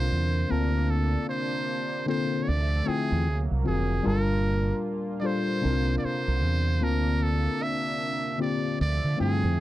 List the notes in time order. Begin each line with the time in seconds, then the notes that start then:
Already playing: C3 D3 A#3 C4 D4 F4 A#4 C5
0.12 E2
0.49 D2 C3 D3 A#3 C4 D4 F4 A#4 A5
0.90 A4
1.29 C5
2.06 D3 A#3 C4 F4 A4 C5
2.43 F3 A3 C#5 E5
2.48 D2 D5
2.84 D3 A3 C4 E4 F4 G#4 G5
2.89 muted fingered electric bass stroke
3.12 E2
3.25 D2 F#3 A#3
3.51 C2
3.63 F1 D3 C4 F4 F#4 G#4 A#4
4.03 G1 A#2 G3 A#3 D4 F4 A#4 A5
5.20 G3 D4 F4 D5
5.24 A4 C5
5.61 C2 C3 D3 A#3 C4 D4 E4 A#4
5.70 F4
5.98 D5
6.05 C5, muted fingered electric bass stroke
6.28 C2
6.44 E2
6.80 D2 C3 D3 A#3 C4 D4 F4 A#4 A5
7.23 A4
7.63 E5
8.37 D3 A#3 C4 F4 G4
8.42 D5
8.77 D2 F3 A3 D5 E5
9.04 D3
9.16 D3 A3 C4 E4 F4 G5
9.21 G2 G#4
9.44 F2
9.57 F#3 A#3